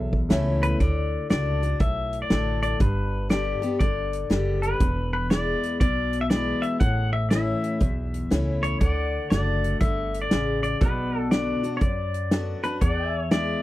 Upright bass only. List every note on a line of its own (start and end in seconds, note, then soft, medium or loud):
0.00 0.23 B1 medium
0.31 0.73 C#2 medium
0.81 1.16 D2 medium
1.31 1.73 C#2 medium
1.80 2.23 B1 medium
2.31 2.73 A1 medium
2.80 3.51 G1 medium
3.81 4.23 G1 medium
4.30 4.73 F#1 medium
4.81 5.52 E1 medium
5.81 6.52 B1 medium
6.81 7.52 A1 medium
7.81 8.24 B1 medium
8.31 8.74 C#2 medium
8.81 9.17 D2 medium
9.31 9.74 F#1 medium
9.81 10.24 G1 medium
10.32 10.74 A1 medium
10.82 11.53 B1 medium
11.82 12.53 F#2 medium
12.82 13.53 E2 medium